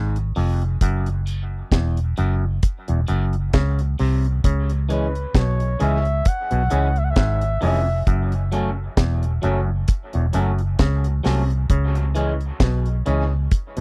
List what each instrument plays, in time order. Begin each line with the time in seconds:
Already playing: fingered electric bass G#1, clav G#2
0.16 closed hi-hat
0.36 fingered electric bass F1, clav F2, clean electric guitar G#3 C#4, open hi-hat
0.62 closed hi-hat
0.81 fingered electric bass F#1, clav F#2, kick, closed hi-hat
1.06 closed hi-hat
1.26 clean electric guitar F#3 A3 C#4, closed hi-hat
1.72 fingered electric bass E1, clav E2, kick, snare, closed hi-hat
1.97 closed hi-hat
2.16 fingered electric bass F#1, clav F#2, clean electric guitar F#3 A3 C#4, closed hi-hat
2.63 kick, closed hi-hat
2.88 fingered electric bass E1, clav E2, closed hi-hat
3.07 fingered electric bass F#1, clav F#2, clean electric guitar F#3 A3 C#4, closed hi-hat
3.33 closed hi-hat
3.53 fingered electric bass C#2, clav C#3, kick, snare, closed hi-hat
3.79 closed hi-hat
3.98 fingered electric bass C2, clav C3, clean electric guitar F#3 A3 C#4, open hi-hat
4.25 closed hi-hat
4.44 fingered electric bass C#2, clav C#3, kick, closed hi-hat
4.70 closed hi-hat
4.89 clean electric guitar E3 G#3 C#4, flugelhorn B4, closed hi-hat
5.15 closed hi-hat
5.35 fingered electric bass B1, clav B2, flugelhorn C#5, kick, snare, closed hi-hat
5.60 closed hi-hat
5.80 fingered electric bass C#2, clav C#3, clean electric guitar E3 G#3 C#4, flugelhorn E5, closed hi-hat
6.05 closed hi-hat
6.25 flugelhorn F#5, kick, closed hi-hat
6.51 fingered electric bass B1, clav B2, closed hi-hat
6.70 fingered electric bass C#2, clav C#3, clean electric guitar E3 G#3 C#4, closed hi-hat
6.96 flugelhorn E5, closed hi-hat
7.04 flugelhorn F#5
7.10 flugelhorn E5
7.16 fingered electric bass G#1, clav G#2, kick, snare, closed hi-hat
7.41 closed hi-hat
7.61 fingered electric bass F1, clav F2, clean electric guitar E3 G#3 C#4, flugelhorn E5, open hi-hat
8.07 fingered electric bass F#1, clav F#2, kick, closed hi-hat
8.32 closed hi-hat
8.52 clean electric guitar F#3 A3 C#4, closed hi-hat
8.97 fingered electric bass E1, clav E2, kick, snare, closed hi-hat
9.23 closed hi-hat
9.42 fingered electric bass F#1, clav F#2, clean electric guitar F#3 A3 C#4, closed hi-hat
9.88 kick, closed hi-hat
10.13 fingered electric bass E1, clav E2, closed hi-hat
10.33 fingered electric bass F#1, clav F#2, clean electric guitar F#3 A3 C#4, closed hi-hat
10.59 closed hi-hat
10.79 fingered electric bass C#2, clav C#3, kick, snare, closed hi-hat
11.04 closed hi-hat
11.24 fingered electric bass C2, clav C3, clean electric guitar F#3 A3 C#4, snare, open hi-hat
11.50 closed hi-hat
11.70 fingered electric bass C#2, clav C#3, kick, closed hi-hat
11.95 closed hi-hat
12.15 clean electric guitar E3 G#3 C#4, closed hi-hat
12.41 closed hi-hat
12.60 fingered electric bass B1, clav B2, kick, snare, closed hi-hat
12.86 closed hi-hat
13.06 fingered electric bass C#2, clav C#3, clean electric guitar E3 G#3 C#4, closed hi-hat
13.51 kick, closed hi-hat
13.77 clav B2, closed hi-hat